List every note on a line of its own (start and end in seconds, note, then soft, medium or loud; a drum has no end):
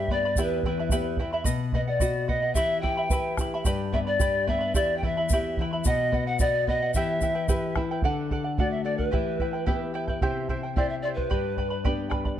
0.00 0.34 G2 medium
0.00 0.10 E5 loud
0.00 0.10 B5 medium
0.08 0.36 B3 medium
0.08 0.24 B4 medium
0.08 0.24 D5 medium
0.08 0.23 G5 medium
0.08 0.24 B5 medium
0.08 bombo low medium
0.12 0.43 D5 medium
0.25 0.38 B4 soft
0.25 0.38 D5 soft
0.25 0.38 B5 medium
0.36 1.44 E2 medium
0.36 0.65 E4 medium
0.36 0.64 G4 medium
0.36 0.65 E5 medium
0.36 0.64 G5 medium
0.36 0.65 B5 medium
0.36 bombo low medium
0.36 shaker medium
0.41 0.66 B4 medium
0.63 0.91 E3 medium
0.63 0.78 E4 medium
0.63 1.16 B4 medium
0.63 0.78 E5 medium
0.63 0.78 G5 medium
0.63 0.78 B5 medium
0.63 bombo low medium
0.80 0.91 E4 soft
0.80 0.91 E5 soft
0.80 0.91 B5 soft
0.89 1.18 B3 medium
0.89 1.19 E4 medium
0.89 1.19 G4 medium
0.89 1.18 E5 medium
0.89 1.18 G5 medium
0.89 1.19 B5 medium
0.89 bombo low medium
0.89 shaker medium
1.17 1.46 E3 medium
1.17 1.33 E4 medium
1.17 1.32 E5 medium
1.17 1.32 G5 medium
1.17 bombo low medium
1.21 1.31 B5 medium
1.33 1.44 E4 medium
1.33 1.45 E5 medium
1.33 1.46 B5 medium
1.44 2.52 B2 medium
1.44 1.72 B4 medium
1.44 1.73 D#5 medium
1.44 1.73 F#5 medium
1.44 bombo low medium
1.44 shaker loud
1.72 2.01 B3 medium
1.72 1.87 B4 medium
1.72 1.87 D#5 medium
1.72 1.81 D#5 medium
1.72 1.86 F#5 medium
1.72 bombo low medium
1.87 2.26 D5 medium
1.87 1.99 D#5 soft
1.87 2.00 F#5 medium
2.00 2.28 F#4 medium
2.00 2.27 B4 medium
2.00 2.27 D#5 medium
2.00 2.28 F#5 medium
2.00 bombo low medium
2.00 shaker medium
2.28 2.55 B3 medium
2.28 2.42 B4 medium
2.28 2.53 D#5 medium
2.28 2.42 D#5 medium
2.28 2.41 F#5 medium
2.28 bombo low medium
2.42 2.56 D#5 soft
2.42 2.55 F#5 medium
2.54 3.63 E3 medium
2.54 2.82 E4 medium
2.54 2.83 G4 medium
2.54 2.80 E5 loud
2.54 2.82 E5 medium
2.54 2.82 G5 medium
2.54 2.83 B5 medium
2.54 bombo low medium
2.54 shaker medium
2.81 2.97 E4 medium
2.81 3.10 G4 medium
2.81 2.97 E5 medium
2.81 3.33 G5 medium
2.81 2.97 G5 medium
2.81 2.96 B5 medium
2.81 bombo low medium
2.97 3.11 E4 soft
2.97 3.11 E5 soft
2.97 3.11 B5 medium
3.10 3.39 E4 medium
3.10 3.38 G4 medium
3.10 3.37 B4 medium
3.10 3.39 E5 medium
3.10 3.38 G5 medium
3.10 3.39 B5 medium
3.10 bombo low medium
3.10 shaker medium
3.37 3.53 E4 medium
3.37 3.65 G4 medium
3.37 3.53 E5 medium
3.37 3.52 G5 medium
3.37 3.53 B5 medium
3.37 bombo rim medium
3.37 bombo low medium
3.37 shaker medium
3.54 3.66 E4 medium
3.54 3.66 E5 medium
3.54 3.65 B5 medium
3.65 4.72 G2 medium
3.65 3.93 G4 medium
3.65 3.92 B4 medium
3.65 3.93 D5 medium
3.65 3.92 G5 medium
3.65 3.93 B5 medium
3.65 bombo low medium
3.65 shaker medium
3.93 4.19 B3 soft
3.93 4.07 B4 medium
3.93 4.06 D5 medium
3.93 3.99 E5 medium
3.93 4.07 G5 medium
3.93 4.06 B5 medium
3.93 bombo low medium
4.06 4.20 B4 soft
4.06 4.49 D5 medium
4.06 4.20 D5 soft
4.06 4.20 B5 medium
4.19 4.46 G4 medium
4.19 4.48 G4 medium
4.19 4.46 B4 medium
4.19 4.48 D5 medium
4.19 4.46 G5 medium
4.19 4.48 B5 medium
4.19 bombo low medium
4.19 shaker medium
4.47 4.74 B3 medium
4.47 4.61 B4 medium
4.47 4.60 D5 medium
4.47 4.76 E5 medium
4.47 4.61 G5 medium
4.47 4.59 B5 medium
4.47 bombo low medium
4.61 4.75 B4 soft
4.61 4.75 D5 soft
4.61 4.75 B5 medium
4.74 5.82 E2 medium
4.74 5.03 E4 medium
4.74 5.02 G4 medium
4.74 4.95 D5 medium
4.74 5.03 E5 medium
4.74 5.02 G5 medium
4.74 5.03 B5 medium
4.74 bombo low medium
4.74 shaker medium
4.97 5.06 G5 medium
5.03 5.29 E3 soft
5.03 5.17 E4 medium
5.03 5.17 E5 medium
5.03 5.58 E5 medium
5.03 5.16 G5 medium
5.03 5.16 B5 medium
5.03 bombo low medium
5.17 5.31 E4 soft
5.17 5.31 E5 soft
5.17 5.30 B5 medium
5.29 5.57 B3 medium
5.29 5.59 E4 medium
5.29 5.59 G4 medium
5.29 5.59 G5 medium
5.29 bombo low medium
5.29 shaker loud
5.34 5.59 E5 medium
5.34 5.59 B5 medium
5.57 5.85 E3 medium
5.57 5.73 E4 medium
5.57 5.72 G5 medium
5.57 bombo low medium
5.61 5.72 E5 medium
5.61 5.72 B5 medium
5.73 5.86 E4 soft
5.73 5.86 E5 soft
5.73 5.85 B5 medium
5.84 6.91 B2 medium
5.84 6.11 B4 medium
5.84 6.13 D#5 medium
5.84 6.24 D#5 loud
5.84 6.13 F#5 medium
5.84 bombo low medium
5.84 shaker loud
6.12 6.39 B3 medium
6.12 6.26 B4 medium
6.12 6.26 D#5 medium
6.12 6.26 F#5 medium
6.12 bombo low medium
6.27 6.40 D#5 soft
6.27 6.39 F#5 loud
6.27 6.40 F#5 medium
6.39 6.66 F#4 medium
6.39 6.67 B4 medium
6.39 6.65 D5 loud
6.39 6.67 D#5 medium
6.39 6.68 F#5 medium
6.39 bombo low medium
6.39 shaker medium
6.67 6.93 B3 medium
6.67 6.81 B4 medium
6.67 6.95 D#5 medium
6.67 6.81 D#5 medium
6.67 6.81 F#5 medium
6.67 bombo low medium
6.82 6.95 D#5 soft
6.82 6.95 F#5 medium
6.94 8.01 E3 medium
6.94 7.21 E4 medium
6.94 7.22 G4 medium
6.94 7.22 B4 medium
6.94 7.76 E5 medium
6.94 7.20 E5 medium
6.94 7.22 G5 medium
6.94 bombo low medium
6.94 shaker medium
7.21 7.48 E4 medium
7.21 7.35 E4 medium
7.21 7.34 B4 medium
7.21 7.35 E5 medium
7.21 7.34 G5 medium
7.21 bombo low medium
7.21 shaker medium
7.35 7.48 E4 soft
7.35 7.48 B4 soft
7.35 7.48 G5 medium
7.48 7.75 E4 medium
7.48 7.76 G4 medium
7.48 7.75 B4 medium
7.48 7.74 E5 medium
7.48 7.75 G5 medium
7.48 bombo low medium
7.48 shaker medium
7.76 7.90 E4 medium
7.76 8.03 E4 medium
7.76 7.90 B4 medium
7.76 7.89 E5 medium
7.76 7.90 G5 medium
7.76 bombo rim medium
7.76 bombo low medium
7.91 8.04 E4 medium
7.91 8.04 B4 medium
7.91 8.04 G5 medium
8.02 9.10 D3 medium
8.02 8.30 A4 medium
8.02 8.31 D5 medium
8.02 8.31 F#5 medium
8.02 bombo low medium
8.31 8.45 A4 medium
8.31 8.45 D5 medium
8.31 8.43 F#5 medium
8.31 bombo low medium
8.44 8.58 D5 soft
8.44 8.58 F#5 soft
8.58 9.11 A3 soft
8.58 9.12 D4 soft
8.58 9.12 F#4 medium
8.58 8.83 A4 medium
8.58 8.72 D5 medium
8.58 8.84 D5 medium
8.58 8.84 F#5 medium
8.58 bombo low medium
8.70 8.85 E5 medium
8.83 8.98 A4 medium
8.83 8.98 D5 medium
8.83 8.97 F#5 medium
8.97 9.79 B4 medium
8.97 9.12 D5 soft
8.97 9.12 F#5 soft
8.97 bombo low medium
9.11 10.19 E3 medium
9.11 9.39 E4 medium
9.11 9.39 G4 medium
9.11 9.40 B4 medium
9.11 9.39 E5 medium
9.11 9.40 G5 medium
9.11 bombo low medium
9.39 9.53 E4 medium
9.39 9.53 B4 medium
9.39 9.53 E5 medium
9.39 9.52 G5 medium
9.39 bombo low medium
9.53 9.66 E4 soft
9.53 9.66 B4 soft
9.53 9.66 G5 soft
9.66 10.20 B3 medium
9.66 9.93 E4 medium
9.66 10.20 E4 soft
9.66 9.94 G4 medium
9.66 10.20 G4 medium
9.66 9.94 B4 medium
9.66 9.93 E5 medium
9.66 9.94 G5 medium
9.66 bombo low medium
9.94 10.08 E4 medium
9.94 10.08 B4 medium
9.94 10.08 E5 medium
9.94 10.07 G5 medium
10.08 10.22 E4 medium
10.08 10.22 B4 medium
10.08 10.21 G5 medium
10.08 bombo low medium
10.21 11.27 C3 medium
10.21 10.49 E4 medium
10.21 10.49 G4 medium
10.21 10.48 C5 medium
10.21 10.48 E5 medium
10.21 10.49 G5 medium
10.21 bombo low medium
10.49 10.63 E4 medium
10.49 10.62 C5 medium
10.49 10.62 E5 medium
10.49 10.62 G5 medium
10.49 bombo low medium
10.63 10.76 E4 soft
10.63 10.77 C5 soft
10.63 10.76 G5 soft
10.76 11.28 C4 soft
10.76 11.29 E4 soft
10.76 11.03 E4 medium
10.76 11.03 G4 medium
10.76 11.29 G4 medium
10.76 11.04 C5 medium
10.76 10.88 D5 medium
10.76 11.02 E5 medium
10.76 11.04 G5 medium
10.76 bombo low medium
10.89 10.95 E5 medium
11.02 11.16 E4 medium
11.02 11.16 C5 medium
11.02 11.08 D5 medium
11.02 11.17 E5 medium
11.02 11.16 G5 medium
11.15 11.30 E4 soft
11.15 11.93 B4 medium
11.15 11.30 C5 soft
11.15 11.30 G5 soft
11.15 bombo low medium
11.30 12.36 G2 medium
11.30 11.57 G4 medium
11.30 11.57 B4 medium
11.30 11.57 D5 medium
11.30 11.57 G5 medium
11.30 11.57 B5 medium
11.30 bombo low medium
11.57 11.71 B4 medium
11.57 11.71 D5 medium
11.57 11.71 G5 soft
11.57 11.69 B5 medium
11.57 bombo low soft
11.70 11.84 B4 soft
11.70 11.84 D5 soft
11.70 11.84 B5 soft
11.84 12.38 B3 soft
11.84 12.38 D4 soft
11.84 12.11 G4 medium
11.84 12.38 G4 medium
11.84 12.10 B4 medium
11.84 12.09 D5 medium
11.84 12.08 G5 medium
11.84 12.10 B5 medium
11.84 bombo low medium
12.10 12.25 B4 medium
12.10 12.24 D5 medium
12.10 12.24 G5 medium
12.10 12.24 B5 medium
12.10 bombo rim medium
12.10 bombo low medium
12.25 12.39 B4 soft
12.25 12.37 D5 soft
12.25 12.38 B5 medium
12.25 bombo low medium